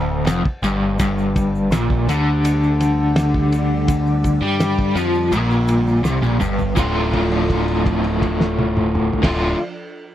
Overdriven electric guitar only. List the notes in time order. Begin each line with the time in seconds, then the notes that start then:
Already playing: D2
0.27 F2
0.45 muted overdriven electric guitar stroke
0.64 G2
1.00 G2
1.72 A#2
2.09 D3
4.42 G3
4.96 F3
5.32 A#2
6.04 C3
6.23 A#2
6.40 G2
6.75 D2 A2 D3 A3 F4
9.22 D2 A2 D3 A3 F4